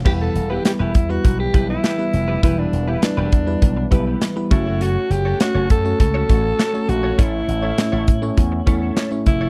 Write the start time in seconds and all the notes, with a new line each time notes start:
0.05 E1 E3 G3 B3 E4 G4 B4, kick, crash
0.21 A4
0.35 E1, muted clean electric guitar stroke, closed hi-hat
0.50 B3 E4 G4 B4
0.65 G3 B3 E4 G4 B4, muted clean electric guitar stroke, snare, closed hi-hat
0.79 E1 B3 E4 G4 B4
0.94 E2, muted clean electric guitar stroke, kick, closed hi-hat
1.09 G3 B3 E4 F#4 B4, muted clean electric guitar stroke
1.24 B1, muted clean electric guitar stroke, kick, closed hi-hat
1.39 G4, muted clean electric guitar stroke
1.53 B1 G3 B3 E4 G4 B4, kick, closed hi-hat
1.69 B3 E4 G4 B4
1.83 B3 E4 G4 B4, snare, closed hi-hat
1.98 G3 B3 E4 B4, muted clean electric guitar stroke
2.13 F1, muted clean electric guitar stroke, closed hi-hat
2.28 B3 E4 G4 B4
2.43 E1 E3 G3 B3 E4 G4 B4, kick, closed hi-hat
2.59 D4
2.73 E1, muted clean electric guitar stroke, closed hi-hat
2.88 B3 E4 G4 B4
3.02 G3 B3 D4 E4 B4, snare, closed hi-hat
3.17 E1 B3 E4 G4 B4
3.32 E2, muted clean electric guitar stroke, kick, closed hi-hat
3.46 G3 B3 E4 B4, muted clean electric guitar stroke
3.62 B1, muted clean electric guitar stroke, kick, closed hi-hat
3.77 muted clean electric guitar stroke
3.91 B1 G3 B3 E4 G4 B4, kick, closed hi-hat
4.06 B3 E4 G4 B4
4.21 snare, closed hi-hat
4.36 G3 B3 E4 B4, muted clean electric guitar stroke
4.50 F#1 A3 C#4 E4 F#4 A4 C#5, kick, closed hi-hat
4.66 C#4 F#4 A4 C#5
4.81 C#4 F#4 A4 C#5, closed hi-hat
5.10 F#1 G4, muted clean electric guitar stroke, closed hi-hat
5.25 C#4 F#4 A4 C#5
5.40 A3 C#4 F#4 C#5, muted clean electric guitar stroke, snare, closed hi-hat
5.55 F#1 C#4 F#4 A4 C#5
5.70 F#2 A4, muted clean electric guitar stroke, kick, closed hi-hat
5.84 A3 C#4 F#4 C#5, muted clean electric guitar stroke
5.99 C#2 A4, muted clean electric guitar stroke, kick, closed hi-hat
6.14 C#4 F#4 A4 C#5
6.29 A1 A3 C#4 F#4 A4 C#5, kick, closed hi-hat
6.44 muted clean electric guitar stroke
6.59 C#4 F#4 A4 C#5, snare, closed hi-hat
6.73 A3 C#4 F#4 C#5, muted clean electric guitar stroke
6.88 A#1 F#4, muted clean electric guitar stroke, closed hi-hat
7.03 C#4 F#4 A4 C#5
7.18 A1 A2 A3 C#4 E4 A4 C#5, kick, closed hi-hat
7.48 A1, muted clean electric guitar stroke, closed hi-hat
7.62 C#4 E4 A4 C#5
7.77 A3 C#4 E4 C#5, muted clean electric guitar stroke, snare, closed hi-hat
7.92 A1 C#4 E4 A4 C#5
8.07 A2, muted clean electric guitar stroke, kick, closed hi-hat
8.22 A3 C#4 E4 C#5, muted clean electric guitar stroke
8.37 E2, muted clean electric guitar stroke, kick, closed hi-hat
8.52 muted clean electric guitar stroke
8.66 E2 A3 C#4 E4 A4 C#5, kick, closed hi-hat
8.81 C#4 E4 A4 C#5
8.96 C#4 E4 A4 C#5, snare, closed hi-hat
9.11 A3 C#4 E4 C#5, muted clean electric guitar stroke
9.26 F1 E4, muted clean electric guitar stroke, kick, closed hi-hat
9.41 C#4 E4 A4 C#5